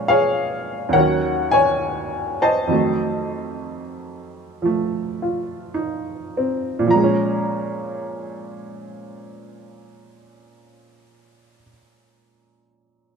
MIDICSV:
0, 0, Header, 1, 2, 480
1, 0, Start_track
1, 0, Key_signature, -5, "minor"
1, 0, Tempo, 846262
1, 1026, Tempo, 895522
1, 1506, Time_signature, 4, 2, 24, 8
1, 1506, Tempo, 940439
1, 1986, Tempo, 1001669
1, 2466, Tempo, 1090909
1, 2946, Tempo, 1176471
1, 5976, End_track
2, 0, Start_track
2, 0, Title_t, "Upright piano"
2, 0, Program_c, 0, 0
2, 0, Control_c, 0, 64, 127
2, 0, Note_on_c, 0, 46, 45
2, 0, Note_on_c, 0, 53, 38
2, 0, Note_on_c, 0, 56, 39
2, 0, Note_on_c, 0, 61, 47
2, 0, Note_on_c, 0, 73, 65
2, 0, Note_on_c, 0, 77, 65
2, 0, Note_on_c, 0, 80, 92
2, 48, Note_off_c, 0, 77, 0
2, 48, Note_on_c, 0, 77, 81
2, 57, Note_off_c, 0, 73, 0
2, 57, Note_on_c, 0, 68, 63
2, 57, Note_on_c, 0, 73, 56
2, 504, Note_on_c, 0, 39, 42
2, 508, Note_off_c, 0, 77, 0
2, 512, Note_off_c, 0, 68, 0
2, 512, Note_off_c, 0, 73, 0
2, 527, Note_on_c, 0, 78, 78
2, 531, Note_on_c, 0, 70, 54
2, 532, Note_on_c, 0, 51, 38
2, 533, Note_off_c, 0, 46, 0
2, 533, Note_on_c, 0, 73, 57
2, 538, Note_off_c, 0, 53, 0
2, 545, Note_off_c, 0, 56, 0
2, 546, Control_c, 0, 64, 0
2, 549, Note_off_c, 0, 61, 0
2, 550, Note_off_c, 0, 80, 0
2, 552, Note_on_c, 0, 54, 39
2, 569, Note_on_c, 0, 61, 49
2, 659, Control_c, 0, 64, 127
2, 838, Note_off_c, 0, 78, 0
2, 859, Note_on_c, 0, 80, 94
2, 861, Note_off_c, 0, 73, 0
2, 870, Note_on_c, 0, 73, 64
2, 1354, Note_on_c, 0, 81, 78
2, 1355, Note_on_c, 0, 72, 59
2, 1356, Note_on_c, 0, 75, 62
2, 1358, Note_off_c, 0, 80, 0
2, 1481, Note_off_c, 0, 70, 0
2, 1486, Note_off_c, 0, 73, 0
2, 1488, Note_off_c, 0, 51, 0
2, 1489, Note_off_c, 0, 39, 0
2, 1489, Note_on_c, 0, 41, 39
2, 1496, Note_on_c, 0, 51, 36
2, 1498, Note_off_c, 0, 54, 0
2, 1506, Note_on_c, 0, 54, 39
2, 1511, Control_c, 0, 64, 0
2, 1513, Note_on_c, 0, 57, 42
2, 1519, Note_off_c, 0, 61, 0
2, 1602, Control_c, 0, 64, 127
2, 2454, Note_on_c, 0, 53, 36
2, 2462, Note_off_c, 0, 57, 0
2, 2469, Note_on_c, 0, 57, 43
2, 2720, Note_on_c, 0, 65, 37
2, 2931, Note_off_c, 0, 72, 0
2, 2931, Note_off_c, 0, 81, 0
2, 2932, Note_off_c, 0, 75, 0
2, 2948, Note_on_c, 0, 63, 43
2, 3058, Note_off_c, 0, 65, 0
2, 3205, Note_on_c, 0, 60, 43
2, 3329, Note_off_c, 0, 63, 0
2, 3376, Note_on_c, 0, 46, 56
2, 3401, Note_off_c, 0, 53, 0
2, 3408, Note_on_c, 0, 53, 52
2, 3417, Note_off_c, 0, 41, 0
2, 3420, Note_off_c, 0, 51, 0
2, 3422, Note_on_c, 0, 82, 70
2, 3424, Note_off_c, 0, 54, 0
2, 3425, Note_off_c, 0, 57, 0
2, 3428, Control_c, 0, 64, 0
2, 3442, Note_on_c, 0, 56, 47
2, 3476, Note_on_c, 0, 61, 59
2, 3507, Control_c, 0, 64, 127
2, 3541, Note_off_c, 0, 60, 0
2, 5313, Note_off_c, 0, 46, 0
2, 5343, Note_off_c, 0, 82, 0
2, 5344, Note_off_c, 0, 53, 0
2, 5379, Note_off_c, 0, 56, 0
2, 5413, Note_off_c, 0, 61, 0
2, 5976, End_track
0, 0, End_of_file